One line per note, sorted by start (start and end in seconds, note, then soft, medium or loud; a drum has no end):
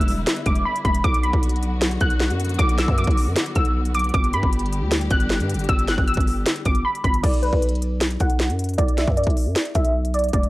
0.00 0.26 E1 loud
0.00 1.00 D3 medium
0.00 1.01 G3 medium
0.00 1.00 B3 medium
0.00 1.01 E4 medium
0.00 0.43 E6 medium
0.00 closed hi-hat medium
0.08 open hi-hat medium
0.27 snare loud
0.27 closed hi-hat medium
0.36 closed hi-hat medium
0.46 0.65 E1 loud
0.46 0.63 D6 medium
0.46 kick loud
0.46 closed hi-hat medium
0.55 closed hi-hat medium
0.65 0.82 B5 medium
0.76 closed hi-hat medium
0.85 1.03 E1 loud
0.85 1.02 B5 medium
0.85 kick medium
0.85 closed hi-hat soft
0.95 closed hi-hat medium
1.04 1.32 B1 loud
1.04 4.11 D3 medium
1.04 4.11 F#3 medium
1.04 7.20 B3 medium
1.04 4.11 F#4 medium
1.04 1.21 D6 loud
1.04 kick loud
1.04 closed hi-hat medium
1.14 closed hi-hat medium
1.23 1.78 B5 medium
1.23 closed hi-hat medium
1.33 1.98 B1 loud
1.33 kick medium
1.43 closed hi-hat medium
1.49 closed hi-hat medium
1.56 closed hi-hat soft
1.63 closed hi-hat medium
1.81 snare loud
1.81 closed hi-hat medium
1.91 closed hi-hat medium
2.01 2.32 B1 loud
2.01 2.56 F#6 medium
2.01 kick loud
2.01 closed hi-hat medium
2.10 closed hi-hat medium
2.20 snare loud
2.30 2.58 F#2 loud
2.30 closed hi-hat medium
2.40 closed hi-hat medium
2.45 closed hi-hat medium
2.49 closed hi-hat medium
2.54 closed hi-hat soft
2.59 2.87 B1 loud
2.59 2.75 D6 loud
2.59 kick loud
2.59 closed hi-hat medium
2.69 closed hi-hat medium
2.78 2.95 E6 medium
2.78 snare medium
2.78 closed hi-hat medium
2.88 3.07 F#2 loud
2.88 kick medium
2.98 3.53 D6 medium
2.98 closed hi-hat medium
3.04 3.28 B1 loud
3.04 kick loud
3.04 closed hi-hat medium
3.11 closed hi-hat soft
3.17 open hi-hat medium
3.27 3.36 F#2 loud
3.36 snare loud
3.36 closed hi-hat medium
3.46 closed hi-hat medium
3.55 4.12 B1 loud
3.55 3.92 E6 medium
3.55 kick loud
3.55 closed hi-hat medium
3.65 closed hi-hat medium
3.85 closed hi-hat medium
3.95 4.11 D6 medium
3.95 closed hi-hat medium
3.99 closed hi-hat medium
4.04 closed hi-hat medium
4.09 closed hi-hat soft
4.14 4.35 G1 loud
4.14 7.21 D3 medium
4.14 7.21 G3 medium
4.14 7.21 G4 medium
4.14 4.31 D6 loud
4.14 kick loud
4.14 closed hi-hat medium
4.24 closed hi-hat medium
4.33 4.42 G2 loud
4.33 4.88 B5 medium
4.33 closed hi-hat medium
4.43 4.83 G1 loud
4.43 kick medium
4.53 closed hi-hat medium
4.59 closed hi-hat medium
4.66 closed hi-hat soft
4.73 closed hi-hat medium
4.82 5.09 D2 loud
4.91 snare loud
4.91 closed hi-hat medium
5.01 closed hi-hat medium
5.10 5.41 G1 loud
5.10 5.66 F#6 medium
5.10 kick loud
5.10 closed hi-hat medium
5.20 closed hi-hat medium
5.30 snare loud
5.40 5.56 G2 loud
5.40 closed hi-hat medium
5.49 closed hi-hat medium
5.54 5.68 G1 medium
5.54 closed hi-hat medium
5.59 closed hi-hat medium
5.64 closed hi-hat soft
5.69 5.97 G1 loud
5.69 5.85 E6 loud
5.69 kick loud
5.69 closed hi-hat medium
5.79 closed hi-hat medium
5.88 6.05 F#6 medium
5.88 snare medium
5.88 closed hi-hat medium
5.98 6.16 G1 loud
5.98 kick medium
6.07 6.62 E6 medium
6.07 closed hi-hat medium
6.14 6.45 G1 loud
6.14 kick loud
6.14 closed hi-hat medium
6.20 closed hi-hat medium
6.27 open hi-hat medium
6.46 snare loud
6.46 closed hi-hat medium
6.56 closed hi-hat medium
6.65 6.84 G1 loud
6.65 6.82 D6 medium
6.65 kick loud
6.65 closed hi-hat medium
6.75 closed hi-hat medium
6.85 7.01 B5 medium
6.95 closed hi-hat medium
7.04 7.23 G1 loud
7.04 7.21 B5 medium
7.04 kick medium
7.04 closed hi-hat soft
7.14 closed hi-hat medium
7.23 7.52 B1 loud
7.23 7.40 D5 loud
7.23 kick loud
7.23 closed hi-hat medium
7.23 crash loud
7.34 closed hi-hat medium
7.43 7.97 B4 medium
7.43 closed hi-hat medium
7.53 8.18 B1 loud
7.53 kick medium
7.62 closed hi-hat medium
7.69 closed hi-hat medium
7.75 closed hi-hat soft
7.82 closed hi-hat medium
8.01 snare loud
8.01 closed hi-hat medium
8.11 closed hi-hat medium
8.20 8.51 B1 loud
8.20 8.75 F#5 medium
8.20 kick medium
8.20 closed hi-hat medium
8.30 closed hi-hat medium
8.40 snare loud
8.49 8.77 F#2 loud
8.49 closed hi-hat medium
8.59 closed hi-hat medium
8.64 closed hi-hat medium
8.69 closed hi-hat medium
8.74 closed hi-hat soft
8.78 9.06 B1 loud
8.78 8.95 D5 loud
8.78 kick loud
8.78 closed hi-hat medium
8.89 closed hi-hat medium
8.98 9.15 E5 medium
8.98 snare medium
8.98 closed hi-hat medium
9.08 9.26 F#2 loud
9.08 kick medium
9.17 9.72 D5 medium
9.17 closed hi-hat medium
9.24 9.48 B1 loud
9.24 kick loud
9.24 closed hi-hat medium
9.30 closed hi-hat soft
9.37 open hi-hat medium
9.46 9.55 F#2 loud
9.56 snare loud
9.56 closed hi-hat medium
9.65 closed hi-hat medium
9.75 10.31 B1 loud
9.75 10.12 E5 medium
9.75 kick medium
9.75 closed hi-hat medium
9.85 closed hi-hat medium
10.05 closed hi-hat medium
10.14 10.31 D5 medium
10.14 closed hi-hat medium
10.19 closed hi-hat medium
10.24 closed hi-hat medium
10.29 closed hi-hat soft
10.33 10.49 E1 loud
10.33 10.49 D5 loud
10.33 kick loud
10.33 closed hi-hat medium
10.43 closed hi-hat medium